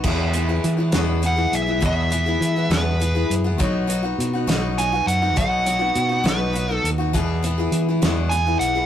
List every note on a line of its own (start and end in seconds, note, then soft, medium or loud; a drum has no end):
0.04 0.34 E2 medium
0.04 0.58 E2 medium
0.04 0.34 B2 medium
0.04 0.32 E3 medium
0.04 0.34 B3 medium
0.04 0.34 E4 medium
0.04 0.34 G#4 medium
0.04 kick loud
0.04 crash medium
0.33 0.49 E3 medium
0.33 0.48 B3 medium
0.33 0.48 E4 medium
0.33 0.47 G#4 medium
0.33 closed hi-hat medium
0.49 0.79 E3 soft
0.49 0.77 B3 soft
0.49 0.77 E4 medium
0.49 0.76 G#4 soft
0.64 0.91 E3 medium
0.64 closed hi-hat medium
0.77 0.92 E3 soft
0.77 0.92 B3 soft
0.77 0.93 E4 soft
0.77 0.93 G#4 soft
0.92 1.23 E2 medium
0.92 1.46 E2 medium
0.92 1.23 B2 medium
0.92 1.21 E3 medium
0.92 1.21 B3 medium
0.92 1.23 E4 medium
0.92 1.23 G#4 medium
0.92 snare medium
0.92 closed hi-hat medium
1.22 1.37 E3 medium
1.22 1.37 B3 soft
1.22 1.37 E4 medium
1.22 1.35 G#4 medium
1.22 closed hi-hat soft
1.26 1.55 F#5 medium
1.36 1.67 E3 soft
1.36 1.68 B3 soft
1.36 1.67 E4 soft
1.36 1.65 G#4 soft
1.52 1.82 B1 medium
1.52 1.81 E5 medium
1.52 closed hi-hat medium
1.66 1.80 E3 soft
1.66 1.81 B3 soft
1.66 1.81 E4 soft
1.66 1.81 G#4 soft
1.81 2.11 E2 medium
1.81 2.35 E2 medium
1.81 2.11 B2 medium
1.81 2.09 E3 medium
1.81 2.10 B3 medium
1.81 2.11 E4 medium
1.81 2.12 G#4 medium
1.81 kick loud
1.81 closed hi-hat medium
1.86 2.75 E5 medium
2.11 2.26 E3 medium
2.11 2.27 B3 medium
2.11 2.26 E4 medium
2.11 2.25 G#4 medium
2.11 closed hi-hat medium
2.26 2.57 E3 soft
2.26 2.57 B3 soft
2.26 2.56 E4 soft
2.26 2.55 G#4 soft
2.41 2.67 E3 medium
2.41 closed hi-hat medium
2.56 2.70 E3 soft
2.56 2.70 B3 soft
2.56 2.71 E4 soft
2.56 2.71 G#4 soft
2.70 3.23 E2 medium
2.70 3.00 E2 medium
2.70 3.00 B2 medium
2.70 2.99 E3 medium
2.70 2.99 B3 medium
2.70 3.00 E4 medium
2.70 3.01 G#4 medium
2.70 3.34 B4 medium
2.70 snare loud
2.70 closed hi-hat medium
3.00 3.15 E3 soft
3.00 3.15 B3 medium
3.00 3.15 E4 medium
3.00 3.14 G#4 medium
3.00 closed hi-hat soft
3.15 3.45 E3 soft
3.15 3.45 B3 soft
3.15 3.44 E4 soft
3.15 3.43 G#4 soft
3.30 3.60 F#2 medium
3.30 closed hi-hat medium
3.44 3.59 E3 soft
3.44 3.58 B3 soft
3.44 3.59 E4 soft
3.44 3.59 G#4 medium
3.58 4.13 B1 medium
3.58 3.88 B2 medium
3.58 3.86 F#3 medium
3.58 3.87 B3 medium
3.58 3.88 D#4 medium
3.58 3.89 F#4 medium
3.58 kick loud
3.58 closed hi-hat medium
3.87 4.03 F#3 medium
3.87 4.03 B3 medium
3.87 4.03 D#4 medium
3.87 4.02 F#4 medium
3.87 closed hi-hat medium
4.03 4.34 B3 soft
4.03 4.33 D#4 soft
4.03 4.32 F#4 medium
4.18 4.45 B2 medium
4.18 closed hi-hat medium
4.33 4.47 B3 soft
4.33 4.47 D#4 soft
4.33 4.48 F#4 soft
4.47 5.01 B1 medium
4.47 4.77 B2 medium
4.47 4.77 F#3 medium
4.47 4.78 B3 medium
4.47 4.78 D#4 medium
4.47 4.78 F#4 medium
4.47 snare medium
4.47 closed hi-hat medium
4.78 4.92 F#3 soft
4.78 4.93 B3 soft
4.78 4.93 D#4 medium
4.78 4.91 F#4 medium
4.78 5.07 G#5 medium
4.78 closed hi-hat medium
4.93 5.23 B3 soft
4.93 5.22 D#4 soft
4.93 5.21 F#4 soft
5.06 5.37 F#2 medium
5.06 5.37 F#5 medium
5.06 closed hi-hat medium
5.22 5.36 B3 soft
5.22 5.36 D#4 soft
5.22 5.37 F#4 medium
5.36 5.90 B1 loud
5.36 5.66 B2 medium
5.36 5.65 F#3 medium
5.36 5.65 B3 medium
5.36 5.66 D#4 medium
5.36 5.67 F#4 medium
5.36 6.29 F#5 medium
5.36 kick loud
5.36 closed hi-hat medium
5.66 5.81 F#3 soft
5.66 5.80 B3 medium
5.66 5.80 D#4 medium
5.66 5.78 F#4 medium
5.66 closed hi-hat medium
5.79 6.11 B3 soft
5.79 6.10 D#4 soft
5.79 6.08 F#4 soft
5.95 6.22 B2 medium
5.95 closed hi-hat medium
6.09 6.24 B3 soft
6.09 6.24 D#4 soft
6.09 6.24 F#4 soft
6.24 6.78 B1 medium
6.24 6.54 B2 medium
6.24 6.52 F#3 medium
6.24 6.53 B3 medium
6.24 6.54 D#4 medium
6.24 6.54 F#4 medium
6.24 snare loud
6.24 closed hi-hat medium
6.28 6.74 B4 medium
6.53 6.69 F#3 medium
6.53 6.69 B3 medium
6.53 6.69 D#4 medium
6.53 6.67 F#4 medium
6.53 closed hi-hat soft
6.69 6.99 B3 soft
6.69 6.98 D#4 soft
6.69 6.97 F#4 soft
6.74 6.89 A4 medium
6.83 7.14 D#2 medium
6.83 closed hi-hat medium
6.98 7.13 B3 soft
6.98 7.14 D#4 soft
6.98 7.13 F#4 medium
7.13 7.43 E2 medium
7.13 7.67 E2 medium
7.13 7.43 B2 medium
7.13 7.41 E3 medium
7.13 7.42 B3 medium
7.13 7.43 E4 medium
7.13 7.44 G#4 medium
7.13 kick loud
7.13 closed hi-hat medium
7.43 7.58 E3 medium
7.43 7.58 B3 medium
7.43 7.59 E4 medium
7.43 7.57 G#4 medium
7.43 closed hi-hat medium
7.58 7.89 E3 soft
7.58 7.88 B3 soft
7.58 7.88 E4 medium
7.58 7.87 G#4 medium
7.72 7.99 E3 medium
7.72 closed hi-hat medium
7.88 8.01 E3 soft
7.88 8.02 B3 soft
7.88 8.02 E4 soft
7.88 8.03 G#4 soft
8.02 8.32 E2 medium
8.02 8.55 E2 medium
8.02 8.32 B2 medium
8.02 8.30 E3 medium
8.02 8.32 B3 medium
8.02 8.32 E4 medium
8.02 8.33 G#4 medium
8.02 snare loud
8.02 closed hi-hat medium
8.29 8.46 E3 medium
8.29 8.47 B3 medium
8.29 8.59 G#5 medium
8.29 closed hi-hat soft
8.34 8.46 E4 medium
8.34 8.45 G#4 medium
8.46 8.77 E3 soft
8.46 8.76 B3 soft
8.46 8.75 E4 soft
8.46 8.74 G#4 soft
8.59 8.86 B1 medium
8.59 8.86 F#5 medium
8.59 closed hi-hat medium
8.75 8.86 E3 soft
8.75 8.86 B3 soft
8.75 8.86 E4 soft
8.75 8.86 G#4 soft